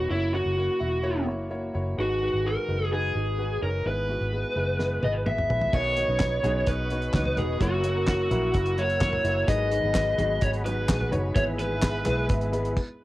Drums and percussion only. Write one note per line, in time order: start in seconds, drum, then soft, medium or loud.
4.79 snare soft
5.03 high tom medium
5.26 mid tom medium
5.38 mid tom medium
5.50 floor tom medium
5.61 floor tom medium
5.73 kick loud
5.73 crash medium
5.96 closed hi-hat medium
6.19 kick loud
6.19 snare medium
6.19 clap medium
6.19 closed hi-hat medium
6.44 closed hi-hat medium
6.44 floor tom medium
6.66 kick medium
6.66 closed hi-hat medium
6.90 closed hi-hat medium
7.02 closed hi-hat soft
7.13 kick loud
7.13 snare medium
7.13 clap medium
7.13 closed hi-hat medium
7.25 floor tom medium
7.37 closed hi-hat soft
7.37 floor tom medium
7.61 kick loud
7.61 closed hi-hat medium
7.84 closed hi-hat medium
8.07 kick loud
8.07 snare loud
8.07 clap medium
8.07 closed hi-hat medium
8.31 closed hi-hat medium
8.31 floor tom medium
8.54 kick loud
8.54 closed hi-hat medium
8.66 closed hi-hat medium
8.78 closed hi-hat soft
8.90 closed hi-hat soft
9.01 kick loud
9.01 snare medium
9.01 clap medium
9.01 closed hi-hat medium
9.13 floor tom medium
9.25 closed hi-hat medium
9.48 kick loud
9.48 closed hi-hat loud
9.71 closed hi-hat medium
9.95 kick loud
9.95 snare loud
9.95 clap medium
9.95 closed hi-hat medium
10.18 closed hi-hat medium
10.18 floor tom medium
10.41 kick loud
10.41 closed hi-hat loud
10.54 closed hi-hat soft
10.66 closed hi-hat medium
10.89 kick loud
10.89 snare loud
10.89 clap medium
10.89 closed hi-hat medium
11.01 floor tom medium
11.12 closed hi-hat medium
11.12 floor tom medium
11.36 kick loud
11.36 closed hi-hat loud
11.59 closed hi-hat medium
11.82 kick loud
11.82 snare loud
11.82 clap medium
11.82 closed hi-hat medium
12.05 clap medium
12.05 closed hi-hat medium
12.05 floor tom medium
12.29 kick loud
12.29 closed hi-hat loud
12.41 closed hi-hat soft
12.53 closed hi-hat medium
12.65 closed hi-hat soft
12.77 kick medium
12.77 crash medium